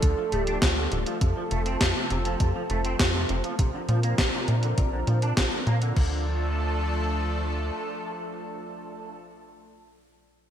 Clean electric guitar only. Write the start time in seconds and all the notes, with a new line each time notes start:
0.02 D3
0.17 F3
0.32 A3
0.47 D4
0.62 A3
0.77 D3
0.92 D3
1.06 F3
1.21 C3
1.36 F3
1.51 A3
1.66 C4
1.81 A3
1.95 C3
2.10 C3
2.25 F3
2.40 C3
2.55 F3
2.70 A3
2.85 C4
3.00 A3
3.15 C3
3.29 C3
3.44 F3
3.59 C3
3.74 D3
3.89 F3
4.04 A#3
4.18 F3
4.33 C3
4.48 C3
4.63 D3
4.78 C3
4.93 D3
5.08 F3
5.22 D4
5.37 C3
5.52 D3
5.67 A#3
5.82 D3
5.96 D3